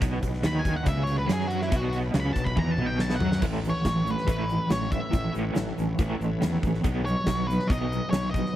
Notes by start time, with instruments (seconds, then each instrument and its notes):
0.02 fingered electric bass B1, overdriven electric guitar B2, tonewheel organ F#3 B3 B4, kick, closed hi-hat
0.23 fingered electric bass B1, overdriven electric guitar B2, kick, closed hi-hat
0.33 snare
0.43 fingered electric bass D#2, overdriven electric guitar D#3, lead electric guitar B5, snare, closed hi-hat
0.59 lead electric guitar G#5
0.65 kick, closed hi-hat
0.76 lead electric guitar F#5
0.86 fingered electric bass C#2, overdriven electric guitar C#3, lead electric guitar E5, kick, closed hi-hat
1.03 lead electric guitar C#5, closed hi-hat
1.18 lead electric guitar B4
1.27 fingered electric bass F#2, overdriven electric guitar F#3, snare, closed hi-hat
1.33 lead electric guitar G#4
1.40 snare
1.48 lead electric guitar F#4, closed hi-hat
1.62 lead electric guitar E4, snare
1.71 fingered electric bass B1, overdriven electric guitar B2, kick, closed hi-hat
1.76 lead electric guitar F#4
1.93 closed hi-hat
2.14 fingered electric bass C#2, overdriven electric guitar C#3, snare, closed hi-hat
2.20 lead electric guitar B5
2.33 fingered electric bass B1, overdriven electric guitar B2, lead electric guitar A5, kick, closed hi-hat
2.44 lead electric guitar B5, kick
2.56 fingered electric bass E2, overdriven electric guitar E3, lead electric guitar A#5, kick, high tom
2.71 lead electric guitar A5
2.78 fingered electric bass B1, overdriven electric guitar B2, mid tom
2.86 lead electric guitar G5
2.99 lead electric guitar A5, snare
3.10 snare
3.16 lead electric guitar F#5
3.20 fingered electric bass F#2, overdriven electric guitar F#3, floor tom
3.32 snare
3.42 fingered electric bass A1, overdriven electric guitar A2 E3 A3, tonewheel organ A3 C#4 B4, kick, crash, shaker
3.62 overdriven electric guitar A2 E3, shaker
3.70 lead electric guitar C#5
3.85 fingered electric bass A1, overdriven electric guitar A2 E3, kick, snare, closed hi-hat, shaker
4.05 overdriven electric guitar A2 E3, shaker
4.11 lead electric guitar B4
4.18 snare
4.27 fingered electric bass A1, overdriven electric guitar A2 E3 A3, kick, closed hi-hat, shaker
4.47 overdriven electric guitar A2 E3, shaker
4.70 fingered electric bass A1, overdriven electric guitar A2 E3, lead electric guitar C#5, snare, closed hi-hat, shaker
4.91 overdriven electric guitar A2 E3, lead electric guitar E5, kick, shaker
5.11 fingered electric bass A1, overdriven electric guitar A2 E3, kick, closed hi-hat, shaker
5.33 fingered electric bass A1, overdriven electric guitar A2 E3 A3, shaker
5.55 fingered electric bass A1, overdriven electric guitar A2 E3, snare, closed hi-hat, shaker
5.78 fingered electric bass A1, overdriven electric guitar A2 E3, shaker
5.99 fingered electric bass A1, overdriven electric guitar A2 E3 A3, kick, closed hi-hat, shaker
6.20 fingered electric bass A1, overdriven electric guitar A2 E3, shaker
6.41 fingered electric bass E2, overdriven electric guitar A2 E3, snare, closed hi-hat, shaker
6.63 fingered electric bass A1, overdriven electric guitar A2 E3, kick, shaker
6.74 snare
6.83 fingered electric bass B1, overdriven electric guitar B2 F#3 B3, tonewheel organ F#3 D#4 B4, kick, closed hi-hat, shaker
7.05 overdriven electric guitar B2 F#3, lead electric guitar C#5, shaker
7.26 fingered electric bass B1, overdriven electric guitar B2 F#3, kick, snare, closed hi-hat, shaker
7.47 overdriven electric guitar B2 F#3, lead electric guitar B4, shaker
7.59 snare
7.68 fingered electric bass B1, overdriven electric guitar B2 F#3, lead electric guitar D#5, kick, closed hi-hat
7.72 overdriven electric guitar B3, shaker
7.92 overdriven electric guitar B2 F#3, shaker
8.10 fingered electric bass B1, lead electric guitar C#5, snare, closed hi-hat, shaker
8.15 overdriven electric guitar B2 F#3
8.31 lead electric guitar D#5, kick
8.35 overdriven electric guitar B2 F#3, shaker
8.46 snare